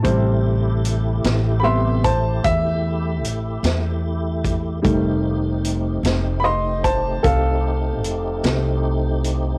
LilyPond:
<<
  \new Staff \with { instrumentName = "Upright piano" } { \time 12/8 \key a \minor \tempo 4. = 50 a''4. r8 <e'' b'' c'''>8 <c'' a''>8 e''2. | r2 <ees'' b'' c'''>8 <c'' a''>8 <a' f''>2. | }
  \new Staff \with { instrumentName = "Upright piano" } { \clef bass \time 12/8 \key a \minor <c g c'>2 <c g b>8 r2. r8 | <ees g a>1. | }
  \new Staff \with { instrumentName = "Tonewheel organ" } { \time 12/8 \key a \minor <a e' g'>1. | <a c' ees' g'>1. | }
  \new Staff \with { instrumentName = "Upright bass" } { \clef bass \time 12/8 \key a \minor a,,4. a,,4. e,4 a,,8 e,4. | f,,4. f,,4. c,4 f,,8 c,4. | }
  \new DrumStaff \with { instrumentName = "Drums" } \drummode { \time 12/8 <hh bd>4 hh8 <hh sn>4 <hh bd>8 <hh bd>4 hh8 <hh sn>4 <hh bd>8 | <hh bd>4 hh8 <hh sn>4 <hh bd>8 <hh bd>4 hh8 <hh sn>4 hh8 | }
>>